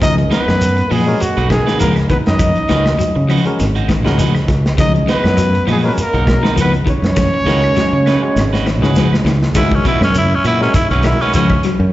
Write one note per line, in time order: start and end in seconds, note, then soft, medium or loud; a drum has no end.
0.01 0.24 C#2 loud
0.01 0.17 F3 medium
0.01 0.37 F#3 medium
0.01 0.36 G#3 medium
0.01 0.37 C#4 medium
0.01 0.16 D#4 loud
0.01 0.37 A#4 medium
0.01 0.16 D#5 loud
0.01 kick loud
0.01 closed hi-hat medium
0.01 claves medium
0.01 shekere medium
0.18 muted clean electric guitar stroke soft
0.18 closed hi-hat soft
0.31 0.47 D#3 medium
0.31 0.47 G#3 medium
0.31 0.92 B3 medium
0.31 0.46 D#4 medium
0.31 0.46 F#4 medium
0.31 0.46 B4 medium
0.31 0.93 B4 loud
0.31 snare medium
0.31 closed hi-hat medium
0.31 shekere soft
0.47 0.81 F#2 medium
0.47 muted clean electric guitar stroke soft
0.47 snare medium
0.47 claves medium
0.61 closed hi-hat medium
0.61 shekere medium
0.77 muted clean electric guitar stroke soft
0.77 closed hi-hat soft
0.90 1.14 A#2 medium
0.90 1.07 F3 medium
0.90 1.07 G#3 medium
0.90 1.23 G#3 medium
0.90 1.06 D#4 medium
0.90 1.06 F#4 medium
0.90 1.23 G#4 medium
0.90 1.06 B4 medium
0.90 open hi-hat medium
0.90 claves medium
0.90 shekere soft
1.07 1.20 G#3 loud
1.07 1.21 C#4 medium
1.07 1.21 F#4 medium
1.07 1.21 A#4 loud
1.07 muted clean electric guitar stroke soft
1.20 1.49 F#3 medium
1.20 1.50 F#4 medium
1.20 muted clean electric guitar stroke soft
1.20 closed hi-hat medium
1.20 shekere medium
1.37 1.60 B1 loud
1.37 1.49 G#3 soft
1.37 1.50 D#4 medium
1.37 1.50 F#4 medium
1.37 1.50 B4 medium
1.37 closed hi-hat soft
1.50 1.59 D#3 medium
1.50 1.91 G#3 medium
1.50 1.78 G#3 medium
1.50 1.91 C#4 medium
1.50 1.91 F#4 medium
1.50 1.79 G#4 medium
1.50 1.91 A#4 medium
1.50 muted clean electric guitar stroke soft
1.50 kick medium
1.50 snare medium
1.50 closed hi-hat soft
1.50 claves medium
1.50 shekere soft
1.67 1.74 D#3 medium
1.67 1.79 D#4 soft
1.67 1.79 F#4 medium
1.67 1.80 B4 medium
1.67 snare medium
1.79 2.04 C#2 medium
1.79 1.96 F3 medium
1.79 1.97 G#3 medium
1.79 1.93 A#3 medium
1.79 1.97 D#4 medium
1.79 1.96 F#4 medium
1.79 1.94 A#4 medium
1.79 1.96 B4 medium
1.79 closed hi-hat medium
1.79 shekere medium
1.96 muted clean electric guitar stroke soft
1.96 snare soft
1.96 closed hi-hat soft
1.96 claves medium
2.10 2.26 D#3 medium
2.10 2.17 B3 medium
2.10 2.18 B4 medium
2.10 muted clean electric guitar stroke soft
2.10 kick medium
2.10 closed hi-hat medium
2.10 shekere soft
2.26 2.50 F#2 medium
2.26 3.42 D#4 medium
2.26 3.42 D#5 loud
2.26 snare medium
2.26 closed hi-hat soft
2.39 2.56 F3 medium
2.39 kick loud
2.39 snare soft
2.39 closed hi-hat medium
2.39 claves medium
2.39 shekere medium
2.55 muted clean electric guitar stroke soft
2.55 muted fingered electric bass stroke soft
2.55 closed hi-hat soft
2.68 2.93 C#2 medium
2.68 2.85 D#3 medium
2.68 2.86 G#3 medium
2.68 2.95 G#3 medium
2.68 2.95 C#4 medium
2.68 2.85 D#4 medium
2.68 2.86 F#4 medium
2.68 2.95 F#4 medium
2.68 2.96 A#4 medium
2.68 2.85 B4 loud
2.68 snare medium
2.68 closed hi-hat medium
2.68 shekere soft
2.86 muted clean electric guitar stroke soft
2.86 snare medium
2.86 claves medium
2.99 3.15 F#3 medium
2.99 closed hi-hat medium
2.99 shekere medium
3.16 3.39 C#3 medium
3.16 muted clean electric guitar stroke medium
3.29 3.45 F3 medium
3.29 3.46 G#3 medium
3.29 3.46 D#4 medium
3.29 3.45 F#4 medium
3.29 3.45 B4 medium
3.29 open hi-hat medium
3.29 claves medium
3.29 shekere soft
3.45 3.65 G#3 medium
3.45 3.65 C#4 medium
3.45 3.65 F#4 medium
3.45 3.65 A#4 medium
3.45 muted clean electric guitar stroke medium
3.45 closed hi-hat soft
3.60 4.05 G#1 medium
3.60 muted clean electric guitar stroke medium
3.60 snare soft
3.60 closed hi-hat medium
3.60 shekere medium
3.75 3.89 G#3 medium
3.75 3.89 D#4 medium
3.75 3.89 F#4 medium
3.75 muted clean electric guitar stroke medium
3.75 closed hi-hat soft
3.88 3.98 D#3 medium
3.88 muted clean electric guitar stroke soft
3.88 kick medium
3.88 snare medium
3.88 closed hi-hat soft
3.88 claves medium
3.88 shekere soft
4.05 4.38 C#2 medium
4.05 4.12 D#3 medium
4.05 4.29 G#3 medium
4.05 4.30 C#4 medium
4.05 4.18 D#4 medium
4.05 4.30 F#4 medium
4.05 4.18 F#4 medium
4.05 4.30 A#4 medium
4.05 4.19 B4 medium
4.05 snare medium
4.05 closed hi-hat soft
4.18 4.34 F3 medium
4.18 4.35 G#3 medium
4.18 4.36 D#4 medium
4.18 4.35 F#4 medium
4.18 4.35 B4 medium
4.18 snare soft
4.18 closed hi-hat medium
4.18 shekere medium
4.35 muted clean electric guitar stroke soft
4.35 snare soft
4.35 closed hi-hat soft
4.35 claves medium
4.48 4.71 C#2 loud
4.48 muted clean electric guitar stroke soft
4.48 kick medium
4.48 snare soft
4.48 closed hi-hat medium
4.48 shekere soft
4.66 snare medium
4.78 5.01 C#2 loud
4.78 4.94 F3 loud
4.78 5.14 F#3 medium
4.78 5.13 G#3 medium
4.78 5.14 C#4 medium
4.78 4.93 D#4 loud
4.78 5.14 G#4 medium
4.78 4.93 D#5 loud
4.78 kick loud
4.78 closed hi-hat medium
4.78 claves medium
4.78 shekere loud
4.95 muted clean electric guitar stroke soft
4.95 closed hi-hat soft
5.07 5.24 D#3 medium
5.07 5.25 G#3 medium
5.07 5.66 B3 medium
5.07 5.24 D#4 loud
5.07 5.24 F#4 medium
5.07 5.23 B4 medium
5.07 5.65 B4 loud
5.07 snare medium
5.07 closed hi-hat medium
5.07 shekere soft
5.24 5.57 F#2 medium
5.24 muted clean electric guitar stroke soft
5.24 snare medium
5.24 claves medium
5.37 5.53 F#3 medium
5.37 closed hi-hat medium
5.37 shekere medium
5.55 muted clean electric guitar stroke soft
5.55 closed hi-hat soft
5.67 5.90 A#2 medium
5.67 5.83 F3 medium
5.67 5.84 G#3 medium
5.67 5.77 G#3 medium
5.67 5.84 D#4 medium
5.67 5.83 F#4 medium
5.67 5.83 B4 medium
5.67 open hi-hat medium
5.67 claves medium
5.67 shekere soft
5.71 5.78 G#4 medium
5.84 5.98 G#3 medium
5.84 5.92 B3 medium
5.84 5.98 C#4 medium
5.84 5.98 F#4 medium
5.84 5.98 A#4 loud
5.84 muted clean electric guitar stroke soft
5.88 5.93 B4 medium
5.98 6.55 A#3 medium
5.98 6.55 A#4 loud
5.98 muted clean electric guitar stroke soft
5.98 closed hi-hat medium
5.98 shekere medium
6.13 6.37 B1 loud
6.13 6.28 G#3 medium
6.13 6.26 D#4 medium
6.13 6.26 F#4 medium
6.13 muted clean electric guitar stroke medium
6.13 closed hi-hat soft
6.26 6.68 G#3 medium
6.26 6.68 C#4 medium
6.26 6.68 F#4 medium
6.26 6.69 A#4 medium
6.26 muted clean electric guitar stroke soft
6.26 kick medium
6.26 snare medium
6.26 closed hi-hat medium
6.26 claves medium
6.26 shekere soft
6.43 6.50 D#3 medium
6.43 6.57 D#4 soft
6.43 6.57 F#4 soft
6.43 6.57 B4 medium
6.43 snare medium
6.56 6.80 C#2 medium
6.56 6.72 F3 medium
6.56 6.74 G#3 medium
6.56 6.73 D#4 medium
6.56 6.73 F#4 medium
6.56 6.72 B4 medium
6.56 closed hi-hat medium
6.56 shekere medium
6.60 6.74 B3 medium
6.60 6.73 B4 loud
6.73 muted clean electric guitar stroke soft
6.73 closed hi-hat soft
6.73 claves medium
6.86 7.02 D#3 medium
6.86 muted clean electric guitar stroke soft
6.86 kick medium
6.86 closed hi-hat medium
6.86 shekere soft
6.90 8.93 C#4 medium
6.90 8.93 C#5 loud
7.02 7.25 F#2 loud
7.02 snare medium
7.02 closed hi-hat soft
7.16 7.33 F3 medium
7.16 kick loud
7.16 snare medium
7.16 claves medium
7.16 shekere medium
7.33 muted fingered electric bass stroke soft
7.33 muted clean electric guitar stroke medium
7.45 7.69 C#2 medium
7.45 7.63 D#3 medium
7.45 7.63 G#3 medium
7.45 7.72 G#3 medium
7.45 7.72 C#4 medium
7.45 7.62 D#4 medium
7.45 7.62 F#4 medium
7.45 7.73 F#4 medium
7.45 7.73 A#4 medium
7.45 7.62 B4 medium
7.45 snare medium
7.45 shekere soft
7.63 muted clean electric guitar stroke soft
7.63 claves medium
7.76 7.92 F#3 medium
7.76 snare medium
7.76 shekere medium
7.93 8.15 C#3 medium
7.93 muted clean electric guitar stroke medium
8.06 8.23 G#3 medium
8.06 8.22 D#4 medium
8.06 8.22 B4 medium
8.06 muted clean electric guitar stroke medium
8.06 snare medium
8.06 claves medium
8.06 shekere soft
8.22 8.41 G#3 loud
8.22 8.41 C#4 medium
8.22 8.42 F#4 medium
8.22 8.42 C#5 loud
8.22 muted clean electric guitar stroke medium
8.36 8.82 G#1 medium
8.36 muted clean electric guitar stroke soft
8.36 snare medium
8.36 shekere medium
8.53 8.66 D#4 medium
8.53 8.66 F#4 medium
8.53 8.66 B4 medium
8.53 snare medium
8.66 8.75 D#3 medium
8.66 muted clean electric guitar stroke soft
8.66 snare medium
8.66 claves medium
8.66 shekere soft
8.82 9.15 C#2 medium
8.82 8.90 D#3 medium
8.82 9.06 G#3 medium
8.82 9.07 C#4 medium
8.82 9.07 F#4 medium
8.82 8.97 F#4 medium
8.82 9.07 G#4 loud
8.82 8.96 B4 medium
8.82 muted clean electric guitar stroke soft
8.82 snare medium
8.96 9.12 F3 medium
8.96 9.13 G#3 medium
8.96 9.12 D#4 medium
8.96 9.12 F#4 medium
8.96 9.14 B4 medium
8.96 snare medium
8.96 shekere medium
9.13 muted clean electric guitar stroke soft
9.13 snare medium
9.13 claves medium
9.25 9.47 C#2 loud
9.25 9.42 D#3 medium
9.25 muted clean electric guitar stroke soft
9.25 snare medium
9.25 shekere soft
9.43 snare medium
9.55 9.78 C#2 loud
9.55 9.72 D#3 medium
9.55 9.90 G#3 medium
9.55 9.72 G#3 medium
9.55 9.90 C#4 medium
9.55 9.76 E4 medium
9.55 9.72 F#4 medium
9.55 9.91 F#4 medium
9.55 9.91 A#4 medium
9.55 9.72 B4 medium
9.55 muted clean electric guitar stroke medium
9.55 kick loud
9.55 closed hi-hat medium
9.55 claves medium
9.55 shekere loud
9.72 9.86 C#4 medium
9.72 muted clean electric guitar stroke soft
9.72 kick medium
9.85 10.01 B2 medium
9.85 10.02 G#3 medium
9.85 10.01 D#4 medium
9.85 10.02 E4 medium
9.85 10.00 F#4 medium
9.85 10.01 B4 medium
9.85 kick medium
9.85 snare soft
9.85 closed hi-hat medium
9.85 shekere soft
10.01 10.34 F#2 loud
10.01 10.15 C#4 medium
10.01 muted clean electric guitar stroke soft
10.01 snare medium
10.01 claves medium
10.14 10.31 C#3 medium
10.14 10.36 E4 medium
10.14 closed hi-hat medium
10.14 shekere loud
10.32 10.46 C#4 medium
10.32 muted clean electric guitar stroke soft
10.44 10.67 A#2 loud
10.44 10.61 G#3 medium
10.44 10.61 E4 medium
10.44 10.61 F#4 medium
10.44 10.60 B4 medium
10.44 muted clean electric guitar stroke medium
10.44 closed hi-hat medium
10.44 claves medium
10.44 shekere soft
10.60 10.74 G#3 loud
10.60 10.74 C#4 medium
10.60 10.75 F#4 medium
10.60 10.75 A#4 loud
10.60 muted clean electric guitar stroke medium
10.60 snare soft
10.74 10.91 D#3 medium
10.74 10.90 E4 medium
10.74 muted clean electric guitar stroke soft
10.74 kick medium
10.74 closed hi-hat medium
10.74 shekere loud
10.90 11.13 B1 loud
10.90 11.04 G#3 medium
10.90 11.07 C#4 medium
10.90 11.04 D#4 medium
10.90 11.04 F#4 medium
10.90 11.04 B4 medium
10.90 closed hi-hat soft
11.03 11.20 D#3 medium
11.03 11.44 G#3 medium
11.03 11.44 C#4 medium
11.03 11.22 E4 medium
11.03 11.44 F#4 medium
11.03 11.44 A#4 medium
11.03 muted clean electric guitar stroke soft
11.03 snare medium
11.03 closed hi-hat medium
11.03 claves medium
11.03 shekere soft
11.20 11.33 C#4 loud
11.20 11.34 D#4 soft
11.20 11.35 F#4 medium
11.20 11.34 B4 medium
11.20 snare soft
11.33 11.56 C#2 medium
11.33 11.51 F3 medium
11.33 11.51 G#3 medium
11.33 11.63 C#4 medium
11.33 11.51 D#4 medium
11.33 11.50 F#4 medium
11.33 11.50 B4 medium
11.33 snare soft
11.33 closed hi-hat medium
11.33 shekere loud
11.50 muted clean electric guitar stroke soft
11.50 kick medium
11.50 claves medium
11.63 11.80 F#3 medium
11.63 muted clean electric guitar stroke soft
11.63 snare soft
11.63 closed hi-hat medium
11.63 shekere soft
11.80 11.93 F#2 loud